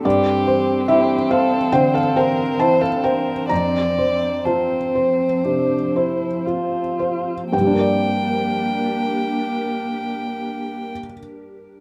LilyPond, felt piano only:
\new Staff \with { instrumentName = "Felt piano" } { \time 4/4 \key g \dorian \tempo 4 = 60 << { d''4 e''8 f''8 g''16 f''16 g''8 a''16 f''16 g''8 | bes''4 a''2 r4 | <g, g d' bes' d'' g''>1 | } \\ { g,8 c''8 e'8 c''8 d8 c''8 e'8 c''8 | f,8 c''8 f'8 c''8 c8 c''8 f'8 c''8 | r1 | } >> }